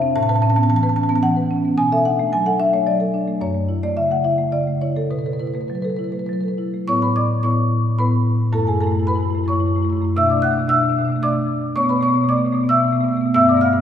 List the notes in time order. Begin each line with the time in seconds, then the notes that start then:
Already playing: C3 E5
0.02 C4
0.16 A2 A5
0.23 A5
0.29 B4 A5
0.36 A5
0.42 C#4 A5
0.50 A5
0.56 B3 A5
0.63 A5
0.70 E3 A5
0.76 A5
0.83 B4 A5
0.89 A5
0.96 C#4 A5
1.03 A5
1.09 B3 A5
1.16 A5
1.23 E3 F#5
1.37 B4
1.51 C#4
1.65 B3
1.78 B2 G#5
1.92 A4 E5
2.05 D4 F#5
2.19 A3
2.32 F#3 G#5
2.46 A4 F#5
2.60 D4 E5
2.73 A3 C#5
2.87 F#3 D5
3.00 A4
3.14 D4
3.27 A3
3.41 F#2 C#5
3.55 A3
3.69 E4
3.83 A3 D5
3.97 C#3 E5
4.11 A3 F#5
4.24 E4 E5
4.38 A3
4.52 C#3 D5
4.67 A3
4.82 E4 C#5
4.96 A3 A4
5.11 B2 B4
5.19 B4
5.26 A4 B4
5.33 B4
5.39 E4 B4
5.47 B4
5.54 A3 B4
5.61 B4
5.68 F#3 B4
5.75 B4
5.82 A4 B4
5.90 B4
5.96 E4 B4
6.04 B4
6.12 A3 B4
6.19 B4
6.26 F#3 B4
6.33 B4
6.41 A4 B4
6.48 B4
6.58 E4
6.74 A3
6.88 A2 B3 E4 C#5 C#6
7.02 B4 B5
7.16 D5 D6
7.43 A2 B3 E4 C#5 C#6
7.98 A2 B3 E4 B4 B5
8.53 F#2 A3 E4 A4 A5
8.60 F#2 A3 E4
8.67 A3 E4 G#4 G#5
8.73 F#2 E4
8.78 A3 A4 A5
8.83 F#2 E4
8.87 A3
8.91 F#2 A3 E4
8.99 F#2 A3 E4
9.07 E4 B4 B5
9.12 F#2 A3 E4
9.20 A3 E4
9.26 F#2 A3
9.30 E4
9.35 F#2 A3 E4
9.44 F#2 A3 E4 C#6
9.49 A3 E4 C#5
9.56 F#2
9.60 A3 E4
9.66 F#2 A3 E4
9.75 F#2 A3 E4
9.83 A3 E4
9.89 F#2 A3 E4
9.97 E4
10.01 F#2 A3 E4
10.16 B2 A3 D4 E5 E6
10.24 B2 A3 D4
10.30 A3 D4 D5 D6
10.37 B2 D4
10.42 A3 D4 F#5 F#6
10.47 B2 A3
10.53 D4
10.58 B2 A3 D4
10.68 B2 A3 D4 E5 E6
10.75 A3 D4
10.80 B2 A3 D4
10.89 B2 A3 D4
10.97 B2 A3 D4
11.05 A3 D4
11.10 B2 D4
11.16 A3
11.22 B2 A3 D4 D5 D6
11.76 B2 A3 B3 C#5 C#6
11.83 B2 A3 B3
11.89 A3 B3 B4 B5
11.96 B2 B3
12.01 A3 C#5 C#6
12.05 B2 A3 B3
12.14 B2 A3 B3
12.21 B2 A3 B3
12.29 A3 B3 D5 D6
12.34 B2 A3
12.38 B3
12.44 B2 A3 B3
12.52 B2 A3 B3
12.61 B2 A3 B3
12.69 A3 B3 E5 E6
12.74 B2 A3
12.79 B3
12.83 B2 A3
12.88 B3
12.92 B2 A3
12.97 A3 B3
13.04 B2 B3
13.08 A3
13.13 B2 A3 B3
13.21 B2 B3
13.26 A3
13.34 G2 A3 B3 E5 E6
13.41 G2 A3 B3
13.49 A3 B3 D5 D6
13.54 G2 A3 B3
13.61 G2 B3 F5 F6
13.65 A3
13.73 G2 A3 B3